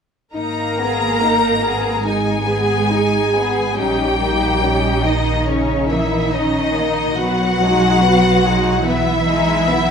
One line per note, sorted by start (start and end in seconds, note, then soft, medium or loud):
0.35 3.74 G#1 soft
0.35 2.03 A#3 soft
0.35 0.76 D#4 soft
0.35 2.03 A#4 soft
0.35 2.03 A#5 medium
0.78 1.22 B3 soft
0.78 1.21 G#4 soft
1.21 1.65 D#4 soft
1.63 2.07 B3 soft
1.63 2.07 G#4 soft
2.06 3.79 G#3 soft
2.06 2.47 D#4 soft
2.06 3.78 G#4 soft
2.06 3.78 G#5 soft
2.48 2.92 B3 soft
2.48 2.92 G#4 soft
2.93 3.36 D#4 soft
3.36 3.79 B3 soft
3.36 3.79 G#4 soft
3.77 7.17 A#1 soft
3.77 5.02 G3 soft
3.77 4.18 C#4 soft
3.77 4.18 D#4 soft
3.77 5.02 G4 soft
3.77 5.02 G5 medium
4.22 4.64 A#3 soft
4.22 4.62 D#4 soft
4.63 5.05 C#4 soft
4.63 5.04 D#4 soft
5.04 5.47 D#3 soft
5.04 5.48 A#3 soft
5.04 5.47 D#4 soft
5.04 5.46 D#4 soft
5.04 5.47 D#5 medium
5.47 5.90 C#3 soft
5.47 5.89 C#4 soft
5.47 5.87 C#4 soft
5.47 5.87 D#4 soft
5.47 5.90 C#5 soft
5.89 6.32 E3 soft
5.89 6.32 A#3 soft
5.89 6.31 D#4 soft
5.89 6.32 E4 soft
5.89 6.31 E5 soft
6.32 7.18 D#3 soft
6.32 6.75 C#4 soft
6.32 6.74 D#4 soft
6.32 7.18 D#4 soft
6.32 7.17 D#5 medium
6.75 7.18 A#3 soft
6.75 7.18 D#4 soft
7.17 9.91 B1 soft
7.17 8.84 F#3 medium
7.17 7.58 B3 soft
7.17 8.83 F#4 medium
7.17 8.86 F#5 medium
7.61 8.03 G#3 soft
7.61 8.03 D#4 soft
8.03 8.45 B3 soft
8.45 8.86 G#3 soft
8.45 8.86 D#4 soft
8.86 9.91 E3 soft
8.86 9.25 B3 soft
8.86 9.91 E4 medium
8.86 9.91 E5 medium
9.28 9.69 G#3 soft
9.28 9.70 D#4 soft
9.69 9.91 B3 soft